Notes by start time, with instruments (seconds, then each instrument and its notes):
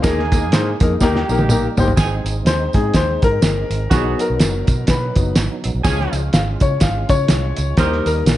Already playing: tonewheel organ A#3
0.02 fingered electric bass D#2, tonewheel organ G#3 D#4, upright piano A#3 D#4 G#4 A#4, horn section A#3 D#4 G#4, kick, snare, closed hi-hat, tambourine
0.19 snare
0.32 upright piano A#3 D#4 G#4 A#4, kick, closed hi-hat, tambourine
0.51 fingered electric bass G#2, upright piano A#3 D#4 G#4 C5, snare, closed hi-hat, tambourine
0.80 fingered electric bass F2, upright piano A#3 D#4 G#4 A#4, kick, closed hi-hat, tambourine
1.00 fingered electric bass D#2, tonewheel organ G3, horn section A#3 D#4 G4, upright piano A#3 D#4 G4 A#4, kick, snare, tambourine
1.16 snare
1.29 fingered electric bass A#1, upright piano A#3 D#4 G4 A#4, tambourine
1.39 high tom
1.49 upright piano A#3 D#4 G4 A#4, mid tom, tambourine
1.77 fingered electric bass G1, upright piano A#3 D#4 G4 C5, floor tom, tambourine
1.88 floor tom
1.97 fingered electric bass G#1, tonewheel organ G#3 C4 D#4, horn section C4 D#4 G#4, kick, snare, closed hi-hat, tambourine
2.24 fingered electric bass G#1, closed hi-hat, tambourine
2.45 fingered electric bass D#2, upright piano C5, snare, closed hi-hat, tambourine
2.73 fingered electric bass G#2, upright piano G#3 C4 D#4 G#4, kick, closed hi-hat, tambourine
2.94 fingered electric bass D#2, upright piano C5, kick, snare, closed hi-hat, tambourine
3.22 fingered electric bass G#2, upright piano A#4, kick, closed hi-hat, tambourine
3.41 fingered electric bass G1, snare, closed hi-hat, tambourine
3.70 fingered electric bass G#1, closed hi-hat, tambourine
3.90 fingered electric bass B1, tonewheel organ F#3 B3, upright piano F#3 B3 D#4 G#4, horn section B3 D#4 F#4, kick, snare, closed hi-hat, tambourine
4.19 upright piano A#4, closed hi-hat, tambourine
4.30 fingered electric bass B1
4.40 fingered electric bass F#1, snare, closed hi-hat, tambourine
4.67 fingered electric bass B2, kick, closed hi-hat, tambourine
4.87 fingered electric bass B2, upright piano B4, kick, snare, closed hi-hat, tambourine
5.16 fingered electric bass F#1, upright piano F#3 B3 D#4, kick, closed hi-hat, tambourine
5.36 fingered electric bass G#1, snare, closed hi-hat, tambourine
5.64 fingered electric bass A#1, closed hi-hat, tambourine
5.75 fingered electric bass B1
5.83 fingered electric bass C#2, upright piano F3 G#3 C#4, tonewheel organ G#3 C#4 F4, horn section C#4 F4 G#4, kick, snare, closed hi-hat, tambourine
6.00 snare
6.13 fingered electric bass C#2, closed hi-hat, tambourine
6.33 fingered electric bass G#1, upright piano F5, snare, closed hi-hat, tambourine
6.60 fingered electric bass C#3, upright piano C#5, kick, closed hi-hat, tambourine
6.80 fingered electric bass G#1, upright piano F5, kick, snare, closed hi-hat, tambourine
7.09 fingered electric bass C#3, upright piano C#5, kick, closed hi-hat, tambourine
7.28 fingered electric bass C2, snare, closed hi-hat, tambourine
7.57 fingered electric bass C#2, closed hi-hat, tambourine
7.77 upright piano D#3 G3 A#3 C5, tonewheel organ G3 A#3 D#4, horn section D#4 G4 A#4, kick, snare, closed hi-hat, tambourine
7.92 snare
8.06 fingered electric bass D#2, upright piano A#4, closed hi-hat, tambourine
8.26 fingered electric bass A#1, snare, closed hi-hat, tambourine